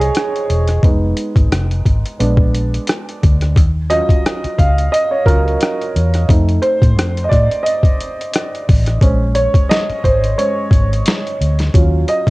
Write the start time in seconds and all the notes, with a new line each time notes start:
Already playing: F3 C4 D#4 C5 C#5 D#5
0.00 G#4, closed hi-hat
0.15 cross-stick, closed hi-hat
0.36 closed hi-hat
0.50 E1, closed hi-hat
0.67 cross-stick, closed hi-hat
0.83 F1 G#3 B3 D#4, kick, closed hi-hat
1.17 closed hi-hat
1.36 G#1, kick, closed hi-hat
1.52 F1, cross-stick, closed hi-hat
1.71 closed hi-hat
1.86 G#1, kick, closed hi-hat
2.06 closed hi-hat
2.19 A#1 G#3 B3 D4, closed hi-hat
2.37 kick
2.55 closed hi-hat
2.74 closed hi-hat
2.87 cross-stick, closed hi-hat
3.09 closed hi-hat
3.23 D2, kick, closed hi-hat
3.41 cross-stick, closed hi-hat
3.56 D#2, kick, closed hi-hat
3.90 F#3 C#4 F4 D#5, closed hi-hat
4.09 muted fingered electric bass stroke, kick, closed hi-hat
4.26 cross-stick, closed hi-hat
4.44 muted fingered electric bass stroke, closed hi-hat
4.58 C#2 F5, kick, closed hi-hat
4.78 closed hi-hat
4.92 D#5, closed hi-hat
5.11 C#5
5.26 C#2 F#3 C#4 F4 A#4, kick, closed hi-hat
5.45 A#4, closed hi-hat
5.61 cross-stick, closed hi-hat
5.81 closed hi-hat
5.96 E2, closed hi-hat
6.14 cross-stick, closed hi-hat
6.28 F2 A3 C4 D#4, kick, closed hi-hat
6.49 closed hi-hat
6.62 C5, closed hi-hat
6.82 A2, kick, closed hi-hat
6.98 F2, cross-stick, closed hi-hat
7.17 closed hi-hat
7.24 D#5
7.29 A2 D5, kick, closed hi-hat
7.33 cross-stick
7.51 closed hi-hat
7.63 D#5, closed hi-hat
7.83 kick, closed hi-hat
8.01 closed hi-hat
8.21 closed hi-hat
8.34 cross-stick, closed hi-hat
8.55 closed hi-hat
8.69 A1, kick, open hi-hat
8.87 cross-stick, closed hi-hat
9.01 A#1 G#3 C#4 C5, kick, closed hi-hat
9.35 C#5, closed hi-hat
9.54 muted fingered electric bass stroke, kick, closed hi-hat
9.69 D#5, snare, closed hi-hat
9.89 muted fingered electric bass stroke, closed hi-hat
10.04 G#1 C5, kick, closed hi-hat
10.24 closed hi-hat
10.38 G#3 C#4 C5 C#5, closed hi-hat
10.71 G#1, kick, closed hi-hat
10.93 closed hi-hat
11.06 snare, closed hi-hat
11.27 closed hi-hat
11.41 D2, closed hi-hat
11.59 snare, closed hi-hat
11.74 D#2 F#3 C#4 F4, kick, closed hi-hat
12.08 D#5, closed hi-hat
12.27 kick